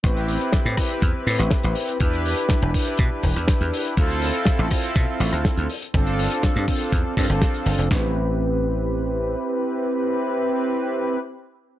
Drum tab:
HH |xxoxx-oxx-oxxxox|xxoxx-oxx-oxxxox|xxoxx-oxx-oxxxox|xxoxx-oxx-oxxxox|
SD |----o-r----ro---|----o------ro---|----o-r----ro---|----o------ro---|
BD |o---o-o-o---o---|o---o-o-o-o-o---|o---o-o-o---o---|o---o-o-o-o-o---|

HH |----------------|----------------|
SD |o---------------|----------------|
BD |o---------------|----------------|